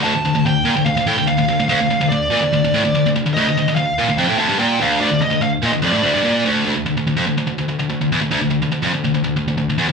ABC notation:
X:1
M:4/4
L:1/16
Q:1/4=145
K:Dphr
V:1 name="Lead electric guitar"
a4 g4 f2 g2 f4 | f4 d8- d2 z2 | e4 f4 g2 a2 g2 f2 | d2 e2 f2 e2 d6 z2 |
z16 | z16 |]
V:2 name="Distorted electric guitar" clef=bass
D,, D,, D,, D,, D,,2 B,, D,, D,, D,, A,, D,, D,, D,, D,, D,, | D,, D,, D,, D,, D,,2 B,, D,, D,, D,, A,, D,, D,, D,, D,, D,, | D,, D,, D,, D,, D,,2 B,, D,, F,, A,, D,, G,, B,,2 D,,2 | D,, D,, D,, D,, D,,2 B,, D,, F,, A,, D,, G,, B,,2 D,,2 |
D,, D,, D,, D,, D,, F,, D,, D,, D,, D,, D,, D,, D,, D,, =E,, D,, | D,, D,, D,, D,, D,, F,, D,, D,, D,, D,, D,, D,, D,, D,, =E,, D,, |]